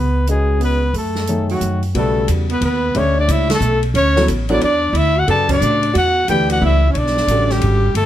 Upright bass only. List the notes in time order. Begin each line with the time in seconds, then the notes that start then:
Already playing: C#2
0.94 F#2
1.61 F#2
1.95 B1
2.29 E2
2.61 D#2
2.95 D2
3.28 C#2
3.61 B1
3.94 D2
4.28 A1
4.61 E2
4.93 D2
5.28 F#2
5.61 A2
5.95 E2
6.28 D2
6.62 C#2
6.95 B1
7.27 A1
7.62 G#1
7.95 G1